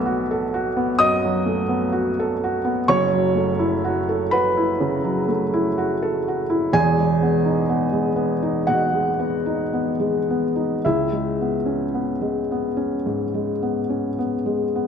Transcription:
0.00 0.97 B1 medium
0.00 1.24 F#3 medium
0.00 1.46 A3 medium
0.00 0.20 B3 medium
0.00 0.96 E5 loud
0.00 0.99 E6 loud
0.06 0.44 F#4 medium
0.31 0.68 A4 medium
0.54 0.92 F#4 medium
0.76 1.15 B3 medium
0.99 1.38 F#2 medium
0.99 2.84 D#5 medium
0.99 2.87 D#6 loud
1.24 1.63 F#3 medium
1.46 1.85 A3 medium
1.69 2.08 B3 medium
1.92 2.31 F#4 medium
2.20 2.56 A4 medium
2.44 2.80 F#4 medium
2.65 2.88 B3 medium
2.88 4.77 F#1 medium
2.88 4.77 F#2 medium
2.88 4.28 C#5 medium
2.88 4.32 C#6 loud
3.13 3.50 F#3 medium
3.35 3.73 A3 medium
3.59 3.98 E4 medium
3.84 4.23 F#4 medium
4.09 4.47 A4 medium
4.31 4.71 F#4 medium
4.31 5.25 B4 medium
4.31 5.29 B5 medium
4.57 4.95 E4 medium
4.80 5.19 C#3 medium
5.04 5.44 F#3 medium
5.28 5.68 A3 medium
5.54 5.93 E4 medium
5.78 6.17 F#4 medium
6.02 6.41 A4 medium
6.28 6.66 F#4 medium
6.50 6.74 E4 medium
6.73 8.64 E1 medium
6.73 8.64 E2 medium
6.73 8.65 G#4 medium
6.73 8.68 G#5 loud
6.98 7.37 G#3 soft
7.22 7.61 B3 soft
7.45 7.85 D#4 medium
7.70 8.09 B3 soft
7.93 8.33 G#3 soft
8.16 8.57 B3 medium
8.43 8.83 D#4 medium
8.67 9.09 B2 soft
8.67 10.78 F#4 medium
8.67 10.81 F#5 medium
8.94 9.35 G#3 soft
9.19 9.62 B3 soft
9.46 9.89 D#4 soft
9.73 10.16 B3 soft
10.00 10.44 G#3 soft
10.30 10.73 B3 soft
10.56 10.83 D#4 soft
10.85 13.03 C#2 medium
10.85 14.15 E4 medium
10.85 14.19 E5 medium
11.13 11.56 G#3 soft
11.41 11.84 B3 soft
11.66 12.10 C#4 soft
11.94 12.38 B3 soft
12.21 12.66 G#3 soft
12.51 12.96 B3 soft
12.77 13.23 C#4 soft
13.06 13.51 G#2 soft
13.34 13.79 G#3 soft
13.62 14.07 B3 soft
13.90 14.34 C#4 soft
14.19 14.62 B3 soft
14.46 14.87 G#3 soft
14.75 14.87 B3 soft

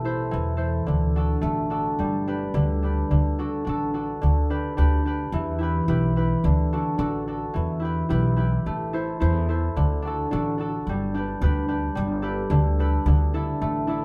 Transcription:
0.00 0.23 A1 medium
0.00 1.41 A3 medium
0.00 1.15 D4 soft
0.00 1.22 G4 soft
0.00 0.11 B4 medium
0.05 0.57 E4 medium
0.05 0.56 A4 soft
0.05 0.57 C5 medium
0.31 0.79 E2 medium
0.31 0.93 E3 medium
0.57 3.18 E4 soft
0.57 1.17 A4 soft
0.57 2.34 C5 medium
0.87 1.34 D2 medium
0.87 2.05 D3 medium
1.16 1.70 D4 medium
1.16 1.70 F#4 soft
1.16 1.71 A4 medium
1.41 1.89 A1 loud
1.41 4.74 A3 medium
1.70 2.27 D4 soft
1.70 2.05 F#4 soft
1.70 3.39 A4 medium
1.99 2.45 G1 medium
1.99 2.61 G3 medium
2.27 2.82 D4 medium
2.27 2.83 G4 medium
2.27 2.84 B4 medium
2.54 3.00 D2 loud
2.54 3.09 D3 medium
2.83 3.38 D4 soft
2.83 3.45 G4 soft
2.83 4.50 B4 soft
3.11 3.57 D2 medium
3.11 4.20 D3 medium
3.39 3.64 D4 medium
3.39 3.66 F#4 medium
3.39 3.69 A4 medium
3.65 4.13 A1 loud
3.65 3.93 D4 medium
3.65 3.94 F#4 medium
3.69 3.94 A4 medium
3.94 4.50 D4 soft
3.94 4.56 F#4 soft
3.94 6.14 A4 soft
4.22 4.68 D2 loud
4.22 5.38 D3 medium
4.50 4.77 D4 medium
4.50 4.77 G4 medium
4.50 4.78 B4 medium
4.77 5.23 D2 loud
4.77 5.05 D4 medium
4.77 5.06 G4 medium
4.77 5.07 B4 medium
5.05 6.72 D4 soft
5.05 5.60 G4 soft
5.05 5.62 B4 medium
5.32 5.78 E2 loud
5.32 6.49 E3 medium
5.59 5.88 E4 medium
5.59 5.89 G4 medium
5.63 5.89 B4 medium
5.88 6.34 B1 loud
5.88 6.16 E4 medium
5.88 6.16 G4 medium
5.88 6.17 B4 medium
6.16 7.79 E4 soft
6.16 6.79 G4 soft
6.16 7.84 B4 medium
6.44 6.90 D2 loud
6.44 7.60 D3 medium
6.73 6.98 D4 medium
6.73 6.98 F#4 soft
6.73 6.99 A4 medium
6.98 7.45 A1 loud
6.98 7.27 D4 medium
6.98 7.27 F#4 medium
6.98 7.28 A4 medium
7.27 10.02 D4 soft
7.27 7.88 F#4 soft
7.27 8.93 A4 soft
7.54 8.01 E2 medium
7.54 8.71 E3 medium
7.80 8.09 E4 medium
7.80 8.09 G4 soft
7.85 8.10 B4 medium
8.09 8.56 B1 loud
8.09 8.36 E4 medium
8.09 8.37 G4 soft
8.09 8.37 B4 medium
8.36 8.93 E4 soft
8.36 10.11 G4 soft
8.36 9.00 B4 medium
8.66 9.11 A1 medium
8.66 11.99 A3 medium
8.93 9.20 E4 medium
8.93 9.20 A4 soft
8.93 9.21 C5 medium
9.20 9.67 E2 loud
9.20 9.48 E4 medium
9.20 9.49 A4 medium
9.20 9.49 C5 medium
9.49 12.10 E4 medium
9.49 10.07 A4 soft
9.49 11.23 C5 medium
9.76 10.22 D2 loud
9.76 10.92 D3 medium
10.02 10.31 D4 medium
10.02 10.32 F#4 medium
10.07 10.32 A4 medium
10.31 10.78 A1 loud
10.31 10.58 D4 medium
10.31 10.59 F#4 medium
10.31 10.60 A4 medium
10.58 11.14 D4 soft
10.58 10.95 F#4 soft
10.58 12.22 A4 medium
10.87 11.32 G1 loud
10.87 11.94 G3 medium
11.14 11.42 D4 medium
11.14 11.42 G4 soft
11.14 11.43 B4 medium
11.42 11.87 D2 loud
11.42 11.68 D4 medium
11.42 11.68 G4 medium
11.42 11.69 B4 medium
11.68 13.33 D4 soft
11.68 12.22 G4 soft
11.68 12.23 B4 medium
11.95 12.42 G1 loud
11.95 12.57 G3 medium
12.22 12.79 G4 medium
12.22 12.80 A4 soft
12.22 12.80 B4 medium
12.50 12.96 D2 loud
12.50 13.06 D3 medium
12.79 14.05 G4 medium
12.79 13.34 A4 medium
12.79 14.05 B4 medium
13.06 13.51 D2 loud
13.06 14.05 D3 medium
13.34 13.87 D4 medium
13.34 13.88 E4 medium
13.34 13.89 A4 medium
13.62 14.05 A1 medium
13.62 14.05 A3 medium
13.87 14.05 D4 medium
13.87 14.05 E4 soft
13.87 14.05 A4 medium

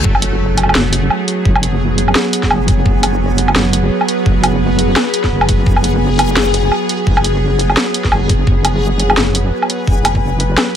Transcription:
0.00 10.76 F#3 medium
0.05 0.74 F#1 loud
0.05 10.76 B3 medium
0.05 10.76 G#4 medium
0.05 2.85 G#4 loud
0.05 kick loud
0.15 low woodblock medium
0.22 closed hi-hat medium
0.57 closed hi-hat medium
0.57 low woodblock soft
0.63 low woodblock medium
0.69 low woodblock medium
0.75 1.10 F#1 medium
0.75 snare loud
0.93 closed hi-hat medium
1.10 low woodblock medium
1.28 closed hi-hat medium
1.45 2.15 F#1 loud
1.45 kick loud
1.55 low woodblock medium
1.63 closed hi-hat medium
1.98 closed hi-hat medium
2.08 low woodblock medium
2.15 snare loud
2.33 closed hi-hat medium
2.43 kick medium
2.43 snare soft
2.50 2.85 F#1 loud
2.50 low woodblock medium
2.68 kick loud
2.68 closed hi-hat medium
2.86 3.55 F#1 loud
2.86 5.66 B4 medium
2.86 kick loud
3.03 closed hi-hat medium
3.03 low woodblock medium
3.38 closed hi-hat medium
3.48 low woodblock medium
3.56 3.90 F#1 medium
3.56 snare loud
3.73 closed hi-hat medium
4.01 low woodblock medium
4.08 closed hi-hat medium
4.26 4.95 F#1 loud
4.26 kick loud
4.44 closed hi-hat medium
4.44 low woodblock medium
4.79 closed hi-hat medium
4.96 snare loud
4.96 low woodblock medium
5.14 closed hi-hat medium
5.24 kick medium
5.24 snare soft
5.32 5.66 F#1 medium
5.41 low woodblock medium
5.49 kick loud
5.49 closed hi-hat medium
5.66 6.36 F#1 loud
5.66 8.46 G#4 loud
5.66 kick loud
5.76 low woodblock medium
5.84 closed hi-hat medium
6.19 closed hi-hat medium
6.19 low woodblock medium
6.37 6.71 F#1 medium
6.37 snare loud
6.54 closed hi-hat medium
6.72 low woodblock medium
6.89 closed hi-hat medium
7.07 7.76 F#1 loud
7.07 kick loud
7.17 low woodblock medium
7.24 closed hi-hat medium
7.59 closed hi-hat medium
7.70 low woodblock medium
7.77 snare loud
7.94 closed hi-hat medium
8.04 kick medium
8.04 snare soft
8.12 8.46 F#1 loud
8.12 low woodblock medium
8.29 kick loud
8.29 closed hi-hat medium
8.47 9.16 F#1 loud
8.47 10.76 B4 medium
8.47 kick loud
8.65 closed hi-hat medium
8.65 low woodblock medium
8.99 closed hi-hat medium
9.10 low woodblock medium
9.17 9.51 F#1 medium
9.17 snare loud
9.35 closed hi-hat medium
9.62 low woodblock medium
9.70 closed hi-hat medium
9.87 10.57 F#1 loud
9.87 kick loud
10.05 closed hi-hat medium
10.05 low woodblock medium
10.15 kick medium
10.40 closed hi-hat medium
10.58 snare loud
10.58 low woodblock medium

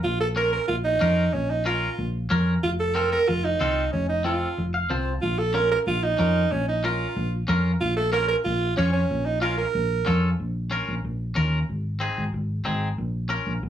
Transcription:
0.04 0.56 A#1 medium
0.04 0.19 F4 medium
0.20 0.28 A4 medium
0.36 0.59 C#4 medium
0.36 0.59 F4 medium
0.36 0.52 A#4 medium
0.36 0.60 A#4 medium
0.52 0.68 A#4 medium
0.68 0.95 A#1 medium
0.68 0.76 F4 medium
0.84 1.35 D#4 medium
1.01 1.27 F2 medium
1.01 1.24 C#4 medium
1.01 1.24 F4 medium
1.01 1.24 A#4 medium
1.33 1.86 A#1 medium
1.33 1.52 C#4 medium
1.50 1.66 D#4 medium
1.65 1.88 C#4 medium
1.65 1.89 F4 medium
1.65 2.11 F4 medium
1.65 1.89 A#4 medium
1.98 2.24 A#1 medium
2.30 2.57 F2 medium
2.30 2.53 C#4 medium
2.30 2.53 F4 medium
2.30 2.54 A#4 medium
2.63 3.15 F1 medium
2.63 2.70 F4 medium
2.79 2.97 A4 loud
2.95 3.18 C4 medium
2.95 3.18 F4 medium
2.95 3.18 A4 medium
2.95 3.11 A#4 medium
3.12 3.30 A#4 loud
3.28 3.54 F1 medium
3.28 3.46 F4 loud
3.44 3.92 D#4 medium
3.61 3.86 C2 medium
3.61 3.83 C4 medium
3.61 3.83 F4 medium
3.61 3.84 A4 medium
3.92 4.45 F1 medium
3.92 4.08 C#4 medium
4.09 4.24 D#4 medium
4.24 4.48 C4 medium
4.24 4.70 F4 medium
4.24 4.48 F4 medium
4.24 4.48 A4 medium
4.58 4.84 F1 medium
4.74 4.89 F5 medium
4.90 5.16 C2 medium
4.90 5.12 C4 medium
4.90 5.13 F4 medium
4.90 5.13 C5 medium
4.90 5.20 A5 medium
5.22 5.74 A#1 medium
5.22 5.40 F4 medium
5.38 5.57 A4 medium
5.54 5.77 C#4 medium
5.54 5.77 F4 medium
5.54 5.77 A#4 medium
5.54 5.71 A#4 medium
5.71 5.78 A#4 medium
5.87 6.13 A#1 medium
5.87 6.05 F4 loud
6.03 6.53 D#4 medium
6.19 6.45 F2 medium
6.19 6.42 C#4 medium
6.19 6.42 F4 soft
6.19 6.42 A#4 medium
6.52 7.03 A#1 medium
6.52 6.68 C#4 medium
6.68 6.86 D#4 medium
6.84 7.06 C#4 medium
6.84 7.32 F4 medium
6.84 7.07 F4 medium
6.84 7.07 A#4 medium
7.16 7.42 A#1 medium
7.48 7.74 F2 medium
7.48 7.71 C#4 medium
7.48 7.71 F4 medium
7.48 7.71 A#4 medium
7.81 8.33 A#1 medium
7.81 7.96 F4 medium
7.97 8.12 A4 medium
8.12 8.36 C#4 medium
8.12 8.36 F4 medium
8.12 8.28 A#4 loud
8.12 8.36 A#4 medium
8.28 8.36 A#4 medium
8.44 8.71 A#1 medium
8.44 8.75 F4 loud
8.77 9.04 F2 medium
8.77 8.92 C#4 medium
8.77 9.00 C#4 medium
8.77 9.00 F4 medium
8.77 9.01 C#5 medium
8.93 9.27 C#4 medium
9.11 9.62 A#1 medium
9.25 9.41 D#4 medium
9.41 9.64 C#4 medium
9.41 9.57 F4 medium
9.41 9.65 F4 medium
9.41 9.65 A#4 medium
9.58 10.19 A#4 medium
9.75 10.00 A#1 medium
10.06 10.33 F2 medium
10.06 10.29 C#4 medium
10.06 10.29 F4 medium
10.06 10.29 A4 medium
10.40 10.78 A#1 medium
10.71 10.94 C#4 medium
10.71 10.94 F4 medium
10.71 10.94 A#4 medium
10.88 11.01 A#1 medium
11.04 11.30 A#1 medium
11.35 11.62 D#2 medium
11.35 11.58 C#4 medium
11.35 11.59 F4 medium
11.35 11.59 A#4 medium
11.69 12.08 G#1 medium
12.00 12.23 C4 medium
12.00 12.23 D#4 medium
12.00 12.24 G#4 medium
12.18 12.30 G#1 medium
12.34 12.59 G#1 medium
12.65 12.92 G#1 medium
12.65 12.88 C4 medium
12.65 12.88 D#4 medium
12.65 12.88 G#4 medium
12.98 13.37 A#1 medium
13.29 13.52 C#4 medium
13.29 13.53 F4 medium
13.29 13.53 A#4 medium
13.47 13.59 A#1 medium
13.63 13.69 A#1 medium

